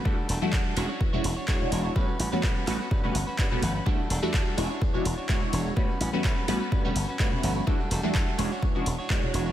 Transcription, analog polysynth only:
X:1
M:4/4
L:1/16
Q:"Swing 16ths" 1/4=126
K:Edor
V:1 name="Analog polysynth"
[G,A,DEF] z2 [G,A,DEF] z2 [^G,CDEF] z2 [G,CDEF] z2 [G,DEFc]4 | [G,A,B,CF] z2 [G,A,B,CF] z2 [G,A,B,CF] z2 [G,A,B,CF] z3 [G,A,B,CF] z2 | [G,A,DEF] z2 [G,A,DEF] z2 [^G,CDEF] z2 [G,CDEF] z2 [G,DEFc]4 | [G,A,B,CF] z2 [G,A,B,CF] z2 [G,A,B,CF] z2 [G,A,B,CF] z2 [G,A,B,CF]4 |
[G,A,DEF] z2 [G,A,DEF] z2 [^G,CDEF] z2 [G,CDEF] z2 [G,DEFc]4 |]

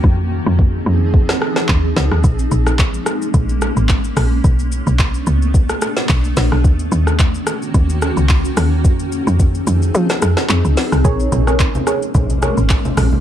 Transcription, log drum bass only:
X:1
M:4/4
L:1/16
Q:"Swing 16ths" 1/4=109
K:Bbm
V:1 name="Log drum bass" clef=bass
F,,3 F,,3 F,,4 z2 E,,2 D,, E,, | B,,,2 B,,,4 z2 B,,,3 A,,,3 B,,,2 | =B,,,3 B,,,3 D,,4 z2 B,,,2 _B,,, =B,,, | E,,2 E,,4 z2 E,,3 D,,3 E,,2 |
F,,3 F,,3 F,,2 F, z F,, z F,, D,, z C,, | B,,,2 B,,,4 z2 B,,,3 A,,,3 B,,,2 |]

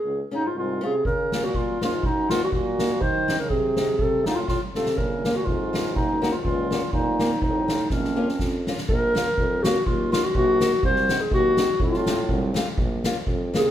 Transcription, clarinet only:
X:1
M:2/4
L:1/16
Q:"Swing" 1/4=123
K:Db
V:1 name="Clarinet"
A2 E F F2 A2 | [K:Bbm] B3 G F2 F2 | E2 F G G4 | c3 B A4 |
=A2 E F F2 A2 | B3 G F4 | E2 E F F4 | E4 E4 |
D6 z2 | B6 G2 | F2 F G G4 | c3 A G4 |
F6 z2 | z6 A2 |]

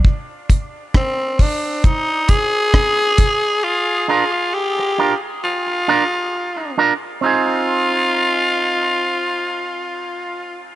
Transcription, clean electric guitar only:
X:1
M:4/4
L:1/8
Q:"Swing 16ths" 1/4=67
K:Fdor
V:1 name="Clean electric guitar"
z8 | z [DFB] z [DFB] z [DFB] z [DFB] | [CEA]8 |]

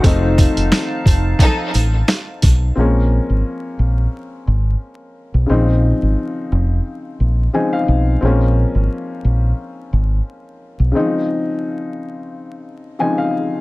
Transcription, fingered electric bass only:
X:1
M:4/4
L:1/16
Q:"Swing 16ths" 1/4=88
K:Bbm
V:1 name="Fingered electric bass" clef=bass
F,,,3 F,,, z2 F,,,2 z2 =A,,,2 z2 _C,,2 | B,,,3 A,,, z2 B,,,2 z2 A,,,2 z3 _C,, | B,,,3 A,,, z2 F,,,2 z2 B,,,2 z2 _C,,2 | B,,,3 A,,, z2 B,,,2 z2 A,,,2 z3 _C,, |
z16 |]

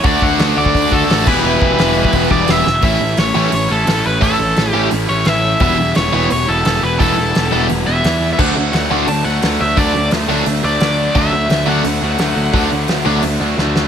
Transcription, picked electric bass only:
X:1
M:4/4
L:1/8
Q:1/4=173
K:D
V:1 name="Picked electric bass" clef=bass
D,, D,, D,, D,, D,, D,, A,,, E,,, | E,,, E,,, E,,,2 E,,, E,,, E,,, E,,, | A,,, A,,, A,,, A,,, A,,, A,,, A,,, A,,, | A,,, A,,, A,,, A,,, A,,, A,,, A,,,2 |
E,,, E,,, E,,, E,,, E,,, E,,, E,,, E,,, | E,,, E,,, E,,, E,,, E,,, E,,, E,,2 | D,, D,, D,, D,, D,, D,, D,, D,, | D,, D,, D,, D,, D,, D,, D,,2 |
D,, D,, D,, D,, D,, D,, D,, D,, | D,, D,, D,, D,, D,, D,, D,,2 |]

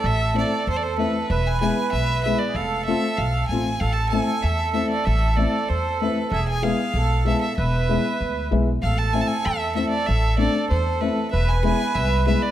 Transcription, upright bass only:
X:1
M:2/4
L:1/8
Q:1/4=96
K:none
V:1 name="Upright bass" clef=bass
A,,,2 E,,2 | E,,,2 B,,,2 | F,,,2 B,,, A,,, | A,,,2 E,,2 |
A,,,2 E,,2 | E,,,2 B,,,2 | E,,,2 D,, B,,, | A,,,2 E,,2 |
A,,,2 E,,2 | E,,,2 C,,2 |]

